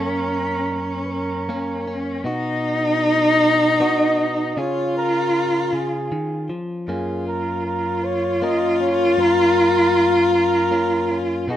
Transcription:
0.00 2.26 F#2 medium
0.00 1.48 A#3 soft
0.00 1.49 C#4 medium
0.00 2.26 C#4 medium
0.00 0.99 A#4 medium
1.04 1.13 B4 soft
1.11 1.97 A#4 medium
1.49 2.21 A#3 medium
1.49 1.86 C#4 medium
1.88 2.25 C#4 medium
2.24 4.55 B2 medium
2.24 3.79 B3 soft
2.24 4.58 D#4 loud
2.24 3.79 D#4 soft
2.24 3.80 F#4 medium
3.80 4.52 B3 medium
3.80 4.17 D#4 medium
3.80 4.57 F#4 medium
3.80 4.60 D#5 medium
4.18 4.52 D#4 medium
4.57 5.72 C#3 medium
4.57 6.89 C#4 medium
4.57 6.49 F4 loud
4.57 6.83 F4 medium
4.57 6.83 G#4 medium
4.57 4.95 C#5 medium
4.97 5.69 A#4 medium
5.73 6.11 C#3 soft
5.73 6.55 G#4 medium
6.12 6.49 D#3 medium
6.49 6.87 F3 medium
6.87 9.17 F#2 medium
6.87 8.41 A#3 medium
6.87 8.42 C#4 medium
6.87 11.50 F4 loud
6.87 7.24 G#4 medium
7.28 7.63 A#4 medium
7.66 8.06 A#4 medium
8.04 8.45 C#5 medium
8.42 9.14 A#3 medium
8.42 8.79 C#4 medium
8.42 9.15 A#4 medium
8.42 8.81 D#5 medium
8.80 9.18 C#4 medium
8.80 9.21 C#5 medium
9.18 11.49 F#2 medium
9.18 10.70 A#3 soft
9.18 10.70 C#4 medium
9.18 10.34 A#4 medium
10.34 11.16 A#4 loud
10.71 11.44 A#3 medium
10.71 11.10 C#4 medium
11.11 11.49 C#4 medium
11.48 11.57 B2 medium
11.48 11.57 B3 medium
11.48 11.57 D#4 loud
11.48 11.57 D#4 medium
11.48 11.57 F#4 medium
11.48 11.57 G#4 medium

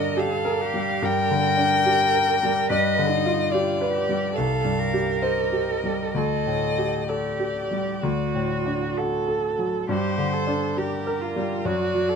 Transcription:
0.00 0.98 G2 soft
0.00 1.30 D3 soft
0.00 0.34 D4 soft
0.00 0.18 A#4 soft
0.00 0.21 D#5 medium
0.16 0.63 G4 soft
0.16 0.62 A4 soft
0.16 1.06 F5 medium
0.45 0.91 A#4 soft
0.61 1.04 G4 medium
0.74 1.19 G3 soft
1.02 2.64 G2 soft
1.02 1.43 A#4 medium
1.02 2.69 G5 medium
1.30 1.75 D3 soft
1.44 2.71 A#4 medium
1.57 2.02 D4 soft
1.86 2.30 G4 soft
2.14 2.58 A#4 soft
2.43 2.70 G3 soft
2.69 4.34 G2 soft
2.69 3.11 B4 medium
2.69 3.53 D#5 medium
2.98 3.42 D3 soft
3.09 3.52 D#4 soft
3.26 3.70 F4 soft
3.50 3.92 F4 soft
3.50 3.98 G4 soft
3.50 4.38 D5 medium
3.81 4.26 B4 soft
3.93 4.34 G4 soft
4.09 4.37 G3 soft
4.35 6.12 C2 soft
4.35 4.80 A4 soft
4.35 5.24 F5 medium
4.65 5.11 G2 soft
4.79 6.18 A#4 medium
4.93 5.41 G4 soft
5.22 5.71 C5 soft
5.22 6.14 D#5 soft
5.52 6.02 G4 soft
5.84 6.15 G3 soft
6.14 7.99 D2 soft
6.14 7.01 A4 soft
6.14 7.10 D#5 medium
6.46 6.97 A2 soft
6.78 7.28 G4 soft
7.08 8.04 G4 soft
7.08 7.59 A4 soft
7.08 8.96 D5 soft
7.39 7.90 G4 soft
7.71 8.03 G3 soft
8.03 9.84 D2 soft
8.03 8.99 F#4 soft
8.35 8.84 A2 soft
8.66 9.15 D4 soft
8.97 9.46 F#4 soft
8.97 9.89 A4 soft
9.28 9.77 A4 soft
9.58 9.88 F#3 soft
9.89 11.60 G2 soft
9.89 10.34 G4 soft
9.89 10.79 C5 medium
10.18 10.64 D3 soft
10.33 10.79 A4 soft
10.47 10.94 D4 soft
10.77 11.24 G4 soft
10.77 11.22 G4 soft
10.77 11.67 A#4 medium
11.07 11.53 A#4 soft
11.21 11.66 F4 soft
11.36 11.65 G3 soft
11.65 12.16 F#2 soft
11.65 12.11 F#4 soft
11.65 12.16 D5 medium
11.94 12.16 F#3 soft
12.09 12.16 A4 soft

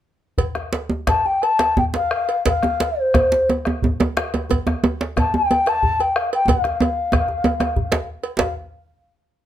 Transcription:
0.38 bombo low medium
0.38 cowbell medium
0.38 djembe bass medium
0.55 bombo rim medium
0.55 djembe slap soft
0.55 djembe tone soft
0.73 cowbell soft
0.73 djembe slap medium
0.90 djembe tone medium
1.07 1.27 A5 medium
1.07 bombo rim medium
1.07 bombo low medium
1.07 cowbell soft
1.07 djembe slap medium
1.07 djembe bass medium
1.26 1.44 G5 medium
1.26 djembe tone soft
1.42 1.77 A5 loud
1.42 bombo rim soft
1.42 cowbell soft
1.42 djembe slap soft
1.59 bombo rim medium
1.59 cowbell soft
1.59 djembe slap medium
1.59 djembe slap soft
1.77 1.84 G5 medium
1.77 bombo low medium
1.77 djembe tone medium
1.77 djembe bass medium
1.94 2.43 F5 medium
1.94 cowbell soft
1.94 djembe slap medium
1.94 djembe tone medium
2.11 bombo rim medium
2.11 djembe slap soft
2.29 bombo rim soft
2.29 cowbell soft
2.46 3.01 F5 medium
2.46 bombo low medium
2.46 cowbell medium
2.46 djembe slap medium
2.46 djembe bass medium
2.63 bombo rim medium
2.63 djembe slap medium
2.63 djembe tone medium
2.80 cowbell soft
2.80 djembe slap medium
3.00 3.50 C5 medium
3.14 bombo rim medium
3.14 bombo low medium
3.14 cowbell soft
3.14 djembe tone medium
3.14 djembe bass medium
3.32 djembe slap medium
3.32 djembe tone medium
3.49 bombo rim soft
3.49 cowbell soft
3.49 djembe slap soft
3.49 djembe tone medium
3.65 bombo rim medium
3.65 djembe slap medium
3.65 djembe tone medium
3.82 bombo low medium
3.82 djembe tone medium
3.82 djembe bass medium
4.00 cowbell soft
4.00 djembe tone medium
4.00 djembe tone loud
4.17 bombo rim loud
4.17 djembe slap medium
4.34 bombo rim soft
4.34 cowbell soft
4.34 djembe tone medium
4.50 bombo low medium
4.50 cowbell medium
4.50 djembe tone medium
4.50 djembe bass medium
4.67 bombo rim medium
4.67 djembe slap medium
4.67 djembe tone medium
4.84 cowbell soft
4.84 djembe tone loud
5.01 djembe slap medium
5.17 5.33 A5 medium
5.17 bombo rim medium
5.17 bombo low medium
5.17 cowbell soft
5.17 djembe tone medium
5.17 djembe bass medium
5.34 5.70 G5 medium
5.34 djembe tone medium
5.51 bombo rim soft
5.51 cowbell soft
5.51 djembe tone medium
5.66 6.02 A5 loud
5.66 bombo rim medium
5.66 cowbell soft
5.66 djembe slap medium
5.83 bombo low medium
5.83 djembe bass medium
6.00 6.18 G5 medium
6.00 cowbell soft
6.00 djembe tone medium
6.16 6.32 F5 medium
6.16 bombo rim loud
6.16 djembe slap soft
6.32 6.50 G5 medium
6.32 bombo rim soft
6.32 cowbell medium
6.47 8.08 F5 medium
6.47 bombo low loud
6.47 cowbell medium
6.47 djembe tone loud
6.47 djembe bass medium
6.64 bombo rim medium
6.64 djembe slap medium
6.64 djembe tone medium
6.80 bombo rim soft
6.80 cowbell medium
6.80 djembe tone loud
7.12 bombo rim medium
7.12 bombo low loud
7.12 cowbell medium
7.12 djembe tone medium
7.12 djembe bass medium
7.28 djembe tone medium
7.44 bombo rim soft
7.44 cowbell soft
7.44 djembe tone loud
7.60 bombo rim medium
7.60 cowbell soft
7.60 djembe slap medium
7.60 djembe tone medium
7.76 bombo low medium
7.76 djembe bass medium
7.92 cowbell soft
7.92 djembe slap loud
7.92 djembe slap soft
7.92 djembe tone medium
8.23 cowbell soft
8.23 djembe slap soft
8.39 8.53 F5 medium
8.39 bombo low medium
8.39 cowbell medium
8.39 djembe slap loud
8.39 djembe bass medium

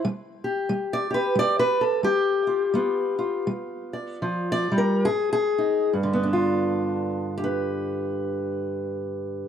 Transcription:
0.05 0.65 G3 medium
0.44 1.09 G4 soft
0.69 1.31 G3 medium
0.93 1.14 D5 medium
1.11 1.81 G4 medium
1.11 1.36 B4 loud
1.35 1.99 G3 medium
1.35 1.59 D5 loud
1.59 1.82 B4 loud
1.81 2.04 A4 medium
2.03 2.69 G3 medium
2.03 3.48 G4 loud
2.47 2.72 F4 soft
2.74 3.42 G3 medium
2.74 4.22 B3 soft
2.74 3.17 F4 medium
3.19 5.03 F4 soft
3.47 4.18 G3 medium
3.93 4.51 D5 soft
4.22 4.71 F3 medium
4.52 4.79 D5 loud
4.72 5.06 G3 medium
4.78 5.06 A#4 medium
5.05 5.86 G#2 medium
5.05 5.31 G#4 loud
5.33 5.92 G#4 loud
5.58 5.89 D#4 soft
5.93 9.43 G2 medium
6.03 9.48 D3 medium
6.13 7.37 B3 medium
6.23 7.43 D4 medium
6.33 9.48 F4 soft
7.38 9.48 G4 medium
7.44 9.48 B4 medium

